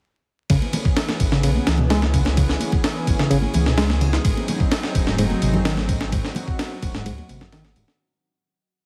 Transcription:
0.49 0.57 C#2 loud
0.49 0.56 C#3 medium
0.49 4.21 E3 medium
0.49 4.21 B3 medium
0.49 4.21 C#4 medium
0.49 6.08 G#4 medium
0.49 kick loud
0.49 ride medium
0.62 muted conga medium
0.73 ride medium
0.73 high conga medium
0.73 low conga medium
0.85 kick loud
0.97 snare loud
0.97 ride medium
1.09 snare soft
1.09 muted conga medium
1.20 1.45 G#1 loud
1.20 kick medium
1.20 ride medium
1.32 1.41 C#3 medium
1.32 snare soft
1.43 1.58 B1 loud
1.43 1.49 C#3 medium
1.43 ride medium
1.43 muted conga medium
1.55 high conga loud
1.67 2.54 C#2 loud
1.67 1.78 E3 medium
1.67 snare loud
1.67 ride medium
1.67 high conga medium
1.78 1.84 B2 loud
1.78 low conga medium
1.90 2.00 G#3 loud
1.90 snare loud
1.90 ride medium
1.90 muted conga medium
2.02 snare soft
2.02 high conga loud
2.14 2.19 C#3 medium
2.14 kick loud
2.14 ride medium
2.25 snare soft
2.25 muted conga medium
2.37 2.43 C#3 medium
2.37 kick loud
2.37 ride medium
2.49 snare soft
2.60 ride medium
2.60 high conga medium
2.72 kick loud
2.72 muted conga medium
2.84 snare loud
2.84 ride medium
3.07 3.15 G#1 loud
3.07 kick loud
3.07 ride medium
3.07 muted conga medium
3.19 3.29 C#3 medium
3.19 snare medium
3.31 3.46 G#1 medium
3.31 3.36 C#3 medium
3.31 ride medium
3.42 high conga medium
3.54 4.18 C#2 medium
3.54 3.65 E3 medium
3.54 ride medium
3.54 muted conga medium
3.54 high conga medium
3.66 3.72 B2 loud
3.66 snare medium
3.78 3.87 G#3 loud
3.78 snare loud
3.78 ride medium
3.90 snare soft
3.90 muted conga medium
3.90 high conga loud
4.01 4.07 C#3 medium
4.01 ride medium
4.01 low conga loud
4.13 snare medium
4.24 4.32 G#1 loud
4.24 4.30 G#2 medium
4.24 7.96 F#3 medium
4.24 7.96 C4 medium
4.24 7.96 D#4 medium
4.24 kick loud
4.24 ride medium
4.37 muted conga medium
4.48 ride medium
4.48 high conga medium
4.48 low conga medium
4.60 kick loud
4.71 snare loud
4.71 ride medium
4.71 muted conga medium
4.83 snare soft
4.95 5.20 D#1 loud
4.95 kick loud
4.95 ride medium
5.07 5.16 G#2 medium
5.07 snare soft
5.18 5.33 F#1 loud
5.18 5.24 G#2 medium
5.18 ride medium
5.18 muted conga medium
5.30 high conga loud
5.42 6.29 G#1 medium
5.42 5.53 C3 medium
5.42 ride medium
5.42 high conga medium
5.54 5.59 F#2 loud
5.54 muted conga medium
5.54 low conga medium
5.65 5.75 D#3 loud
5.65 snare loud
5.65 ride medium
5.77 snare soft
5.77 high conga medium
5.89 5.95 G#2 medium
5.89 kick loud
5.89 ride medium
6.01 snare soft
6.01 muted conga medium
6.12 6.18 G#2 medium
6.12 7.98 F#4 medium
6.12 kick loud
6.12 ride medium
6.24 snare soft
6.35 ride medium
6.35 muted conga medium
6.35 high conga medium
6.35 low conga medium
6.48 kick loud
6.59 snare loud
6.59 ride medium
6.82 7.07 D#1 loud
6.82 kick medium
6.82 ride medium
6.82 muted conga medium
6.95 7.04 G#2 medium
6.95 snare medium
7.06 7.21 D#2 medium
7.06 7.12 G#2 medium
7.06 ride medium
7.18 muted conga soft
7.18 high conga loud
7.28 7.75 G#1 medium
7.28 7.40 C3 medium
7.28 ride medium
7.28 high conga medium
7.41 7.47 F#2 loud
7.41 snare medium
7.52 7.62 D#3 loud
7.52 snare loud
7.52 ride medium
7.65 snare soft
7.65 muted conga medium
7.65 high conga loud
7.76 7.84 D#1 medium
7.76 7.82 G#2 medium
7.76 ride medium
7.76 low conga medium
7.88 snare medium

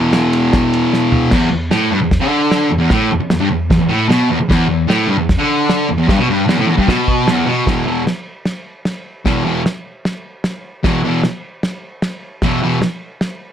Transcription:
0.00 1.30 E2 medium
0.00 1.31 B2 medium
0.00 1.33 E3 loud
0.13 snare loud
0.13 ride loud
0.33 ride medium
0.53 kick loud
0.53 snare loud
0.53 ride loud
0.73 ride medium
0.93 snare medium
1.12 floor tom loud
1.31 1.50 E2 loud
1.31 kick loud
1.31 snare loud
1.31 crash loud
1.31 crash medium
1.51 1.68 E2 medium
1.71 1.91 A2 loud
1.71 snare loud
1.71 crash medium
1.91 2.01 G2 loud
2.02 2.18 E2 medium
2.11 kick loud
2.11 snare loud
2.11 crash medium
2.21 2.70 D3 loud
2.51 snare loud
2.51 crash medium
2.70 2.78 E2 medium
2.79 2.89 E2 loud
2.90 3.11 A2 loud
2.90 kick loud
2.90 snare loud
2.90 crash medium
3.11 3.19 E2 medium
3.21 muted distorted electric guitar stroke medium
3.30 3.40 E2 medium
3.30 snare loud
3.30 crash medium
3.40 3.50 G2 loud
3.51 3.67 E2 medium
3.70 3.78 E2 medium
3.70 kick loud
3.70 snare loud
3.70 crash medium
3.79 3.90 E2 medium
3.89 4.08 A2 loud
4.09 4.29 B2 loud
4.09 snare loud
4.09 crash medium
4.30 4.39 E2 loud
4.41 muted distorted electric guitar stroke medium
4.49 4.68 E2 loud
4.49 kick loud
4.49 snare loud
4.49 crash medium
4.69 4.85 E2 medium
4.88 5.08 A2 loud
4.88 snare loud
4.88 crash medium
5.07 5.18 G2 loud
5.18 5.35 E2 medium
5.29 kick loud
5.29 snare loud
5.29 crash medium
5.39 5.88 D3 loud
5.69 snare loud
5.69 crash medium
5.89 5.97 E2 medium
5.98 6.08 E2 loud
6.09 6.18 G2 loud
6.09 kick loud
6.09 snare loud
6.09 crash medium
6.19 6.28 B2 loud
6.29 6.47 G2 loud
6.48 6.57 E2 loud
6.48 snare loud
6.48 crash medium
6.58 6.67 A2 loud
6.66 6.77 E2 loud
6.77 6.87 G2 loud
6.77 kick medium
6.87 7.27 B2 loud
6.87 kick loud
6.87 snare loud
6.87 crash medium
7.08 kick medium
7.27 7.47 E2 loud
7.27 snare loud
7.27 crash medium
7.46 7.66 B2 loud
7.66 7.83 E2 loud
7.66 7.83 B2 medium
7.66 7.84 E3 loud
7.66 kick loud
7.66 snare loud
7.66 crash medium
7.86 8.02 E2 medium
7.86 8.03 B2 medium
7.86 8.03 E3 medium
8.07 snare loud
8.07 crash medium
8.45 snare loud
8.45 crash medium
8.85 snare loud
8.85 crash medium
9.25 9.42 E2 medium
9.25 9.42 B2 medium
9.25 9.42 E3 loud
9.25 kick loud
9.25 snare loud
9.25 crash medium
9.44 9.61 E2 loud
9.44 9.61 B2 loud
9.44 9.62 E3 loud
9.66 snare loud
9.66 crash medium
10.05 snare loud
10.05 crash medium
10.44 snare loud
10.44 crash medium
10.83 11.00 E2 medium
10.83 11.00 B2 loud
10.83 11.01 E3 loud
10.83 kick loud
10.83 snare loud
10.83 crash medium
11.03 11.20 E2 medium
11.03 11.20 B2 loud
11.03 11.21 E3 loud
11.23 snare loud
11.23 crash medium
11.63 snare loud
11.63 crash medium
12.02 snare loud
12.02 crash medium
12.42 12.58 E2 medium
12.42 12.59 B2 medium
12.42 12.59 E3 loud
12.42 kick loud
12.42 snare loud
12.42 crash medium
12.62 12.78 E2 medium
12.62 12.78 B2 loud
12.62 12.79 E3 loud
12.82 snare loud
12.82 crash medium
13.21 snare loud
13.21 crash medium

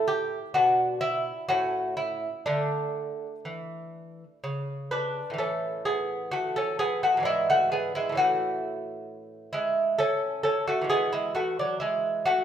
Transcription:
0.00 0.37 A2 medium
0.00 0.52 E4 medium
0.08 0.53 G4 loud
0.54 1.31 B2 medium
0.54 1.46 D4 medium
0.54 1.00 F#4 medium
1.01 1.47 E4 loud
1.49 2.28 A2 medium
1.49 2.43 C#4 medium
1.49 1.96 F#4 loud
1.97 2.45 E4 medium
2.46 3.26 D3 medium
2.46 5.36 A3 medium
2.46 4.38 D4 medium
3.45 4.23 E3 medium
4.44 5.21 C#3 medium
4.91 5.37 D4 medium
4.91 5.38 B4 medium
5.30 7.17 A2 medium
5.30 7.19 E3 medium
5.38 5.83 C#4 medium
5.38 5.84 A4 medium
5.85 6.30 B3 medium
5.85 6.31 G#4 medium
6.31 6.55 A3 medium
6.31 6.56 F#4 medium
6.56 6.79 C#4 medium
6.56 6.79 A4 medium
6.79 7.01 B3 medium
6.79 7.02 G#4 loud
7.03 7.22 A3 medium
7.03 7.25 F#4 medium
7.17 8.09 G#2 medium
7.17 8.11 E3 soft
7.23 7.48 G#3 medium
7.23 8.14 D4 soft
7.23 7.49 E4 medium
7.50 7.71 A3 medium
7.50 7.71 F#4 medium
7.72 7.94 B3 medium
7.72 7.95 G#4 medium
7.95 8.17 G#3 medium
7.95 8.17 E4 medium
8.09 10.82 A2 medium
8.09 10.80 E3 soft
8.15 9.50 A3 medium
8.15 9.99 C#4 soft
8.15 9.50 F#4 medium
9.53 9.96 G#3 medium
9.53 9.97 E4 medium
9.98 10.42 C#4 medium
9.98 10.42 A4 loud
10.43 10.66 C#4 medium
10.43 10.67 A4 medium
10.67 10.89 A3 medium
10.67 10.90 F#4 medium
10.82 12.44 E3 medium
10.82 11.12 G#3 soft
10.89 11.11 B3 medium
10.89 11.12 G#4 loud
11.13 11.34 G#3 medium
11.13 11.34 E4 medium
11.35 11.57 A3 medium
11.35 11.58 F#4 medium
11.59 11.81 F#3 medium
11.59 11.80 D4 medium
11.80 12.23 G#3 medium
11.80 12.24 E4 medium
12.26 12.44 A3 medium
12.26 12.44 F#4 loud

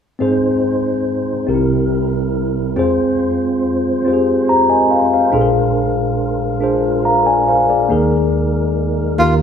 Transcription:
0.19 1.45 G#2 soft
0.19 1.47 G#3 soft
0.19 1.26 C4 medium
0.19 5.29 C4 soft
0.19 1.47 D#4 soft
0.19 1.27 D#4 medium
0.19 1.27 G#4 medium
0.19 1.47 C5 soft
0.19 1.28 C5 medium
1.47 2.72 C2 soft
1.47 2.73 C3 soft
1.47 2.76 G3 soft
1.47 2.54 C4 medium
1.47 1.54 D#4 soft
1.47 2.76 E4 soft
1.47 2.55 G4 soft
1.47 2.76 A#4 soft
1.47 2.55 A#4 medium
1.54 2.58 E4 soft
2.76 5.30 F2 medium
2.76 9.14 G#3 soft
2.76 3.83 C4 medium
2.76 7.86 F4 soft
2.76 3.83 F4 medium
2.76 3.84 G#4 medium
2.76 5.31 C5 soft
2.76 3.84 C5 medium
4.05 5.11 C4 medium
4.05 5.12 F4 soft
4.05 4.12 G4 soft
4.05 4.48 C5 medium
4.13 4.52 G#4 soft
4.49 4.69 G4 soft
4.49 4.69 C5 soft
4.49 4.68 A#5 medium
4.70 5.10 A#4 soft
4.70 5.10 D#5 soft
4.70 4.89 G#5 soft
4.91 5.12 F5 soft
5.14 5.53 C5 soft
5.14 5.53 F5 soft
5.32 7.86 A#1 medium
5.32 7.86 A#2 soft
5.32 6.39 D4 medium
5.32 7.87 D4 soft
5.32 6.39 F4 medium
5.32 6.40 G#4 medium
5.32 5.40 A4 medium
5.32 9.42 A#4 medium
5.41 6.44 A#4 medium
6.60 7.68 D4 medium
6.60 7.68 F4 soft
6.60 7.05 G#4 soft
6.60 7.05 C5 medium
7.05 7.25 F5 soft
7.05 7.25 A#5 soft
7.26 7.47 D5 soft
7.26 7.46 G#5 soft
7.48 7.68 C5 soft
7.48 7.68 F5 medium
7.70 7.90 G#4 soft
7.70 8.10 D5 soft
7.89 9.15 D#2 medium
7.89 9.15 D#3 soft
7.89 8.96 A#3 medium
7.89 9.42 A#3 soft
7.89 8.96 D#4 medium
7.89 9.42 D#4 soft
7.89 8.97 G#4 medium
7.89 8.97 A#4 medium
9.18 9.42 D#2 medium
9.18 9.42 D#3 medium
9.18 9.42 D#3 soft
9.18 9.42 A#3 soft
9.18 9.42 D#4 medium
9.18 9.35 F4 medium
9.18 9.42 G4 medium
9.18 9.42 A#4 medium

